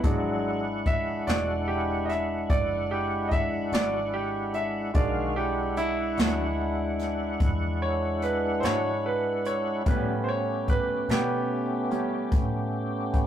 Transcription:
0.03 fingered electric bass G#1, grand piano F#3 G#3 D4, tonewheel organ G#3 D4 E4 F#5, kick, closed hi-hat
0.86 grand piano E5, kick, closed hi-hat
1.27 fingered electric bass E1, clean electric guitar E3 G#3 D4 F#4, grand piano D5, snare, closed hi-hat
1.68 grand piano G4
2.05 grand piano D#5
2.09 grand piano E5, snare, closed hi-hat
2.50 fingered electric bass F#1, grand piano D5, kick, closed hi-hat
2.91 grand piano G4
3.28 grand piano D#5, kick, closed hi-hat
3.32 grand piano E5
3.72 fingered electric bass G#1, clean electric guitar E3 G#3 D4 F#4, grand piano D5, snare, closed hi-hat
4.14 grand piano G4
4.54 grand piano E5, closed hi-hat
4.94 fingered electric bass B1, tonewheel organ D#3 G#3 F#4 F5, grand piano G#3 D4 F#4 D5, kick, closed hi-hat
5.36 tonewheel organ G#3 D4 E4 F#5, grand piano G4
5.77 grand piano E4, closed hi-hat
6.17 fingered electric bass D2, clean electric guitar E3 G#3 D4 F#4, snare, closed hi-hat
6.99 snare, closed hi-hat
7.40 fingered electric bass E2, kick, closed hi-hat
7.82 grand piano C#5
8.22 grand piano B4, closed hi-hat
8.60 fingered electric bass G#2, clean electric guitar D4 F#4, grand piano C5, closed hi-hat
8.64 clean electric guitar E3 G#3, grand piano C#5, snare
9.06 grand piano B4
9.45 grand piano C#5, closed hi-hat
9.86 clean electric guitar A2 G3 B3 C#4, fingered electric bass A2, grand piano G3 B3 C#4 B4, tonewheel organ A3 B3 C#4 G4, kick, closed hi-hat
10.24 grand piano C5
10.29 grand piano C#5
10.68 grand piano B4, kick, closed hi-hat
11.08 clean electric guitar A2 G3 B3 C#4, fingered electric bass B2, grand piano B3 G4, snare, closed hi-hat
11.91 grand piano G3 B3 C#4, closed hi-hat
12.32 fingered electric bass A2, kick, closed hi-hat
13.14 kick, closed hi-hat

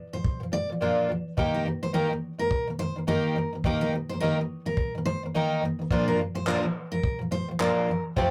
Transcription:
0.13 twelve-string acoustic guitar A#2 F3, steel-string acoustic guitar C5
0.24 kick
0.40 twelve-string acoustic guitar A#2 F3
0.52 twelve-string acoustic guitar A#2 F3, steel-string acoustic guitar D5
0.70 twelve-string acoustic guitar A#2 F3
0.81 twelve-string acoustic guitar A#2 F3 A#3 D4 F4
1.09 twelve-string acoustic guitar A#2 F3
1.37 twelve-string acoustic guitar D#3 A#3 D#4 G4, kick
1.54 steel-string acoustic guitar A#4
1.66 twelve-string acoustic guitar D#3 A#3
1.83 twelve-string acoustic guitar D#3 A#3, steel-string acoustic guitar C5
1.93 twelve-string acoustic guitar D#3 A#3 D#4 G4, steel-string acoustic guitar A#4
2.10 twelve-string acoustic guitar D#3 A#3
2.38 twelve-string acoustic guitar D#3 A#3, steel-string acoustic guitar A#4
2.51 kick
2.67 twelve-string acoustic guitar D#3 A#3
2.79 twelve-string acoustic guitar D#3 A#3, steel-string acoustic guitar C5
2.96 twelve-string acoustic guitar D#3 A#3
3.07 twelve-string acoustic guitar D#3 A#3 D#4 G4, steel-string acoustic guitar A#4
3.36 twelve-string acoustic guitar D#3 A#3
3.53 twelve-string acoustic guitar D#3 A#3
3.64 twelve-string acoustic guitar D#3 A#3 D#4 G4, kick
3.81 steel-string acoustic guitar A#4
3.93 twelve-string acoustic guitar D#3 A#3
4.09 twelve-string acoustic guitar D#3 A#3, steel-string acoustic guitar C5
4.20 twelve-string acoustic guitar D#3 A#3 D#4 G4, steel-string acoustic guitar A#4
4.38 twelve-string acoustic guitar D#3 A#3
4.66 twelve-string acoustic guitar D#3 A#3, steel-string acoustic guitar A#4
4.77 kick
4.95 twelve-string acoustic guitar D#3 A#3
5.06 twelve-string acoustic guitar D#3 A#3, steel-string acoustic guitar C5
5.23 twelve-string acoustic guitar D#3 A#3
5.35 twelve-string acoustic guitar D#3 A#3 D#4 G4
5.62 twelve-string acoustic guitar D#3 A#3
5.79 twelve-string acoustic guitar D#3 A#3
5.91 twelve-string acoustic guitar A#2 F3 A#3 D4 F4, kick
6.08 steel-string acoustic guitar A#4
6.19 twelve-string acoustic guitar A#2 F3
6.35 twelve-string acoustic guitar A#2 F3, steel-string acoustic guitar C5
6.46 twelve-string acoustic guitar A#2 F3 A#3 D4 F4, steel-string acoustic guitar A#4, clap
6.63 twelve-string acoustic guitar A#2 F3
6.91 twelve-string acoustic guitar A#2 F3, steel-string acoustic guitar A#4
7.04 kick
7.19 twelve-string acoustic guitar A#2 F3
7.31 twelve-string acoustic guitar A#2 F3, steel-string acoustic guitar C5
7.48 twelve-string acoustic guitar A#2 F3
7.60 twelve-string acoustic guitar A#2 F3 A#3 D4 F4, steel-string acoustic guitar A#4, clap
7.89 twelve-string acoustic guitar A#2 F3
8.16 twelve-string acoustic guitar F2 C3 F3 A3 C4 G4, kick

